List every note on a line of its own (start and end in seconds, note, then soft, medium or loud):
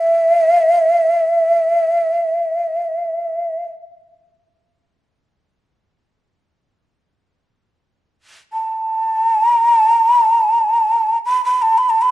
0.00 3.63 E5 medium
8.53 9.47 A5 medium
9.47 9.72 A#5 medium
9.72 10.00 A5 medium
10.00 10.25 A#5 medium
10.25 11.18 A5 medium
11.25 11.41 B5 medium
11.45 11.63 B5 medium
11.62 11.79 A5 medium
11.78 11.91 B5 medium
11.90 12.03 A5 medium
12.02 12.11 B5 medium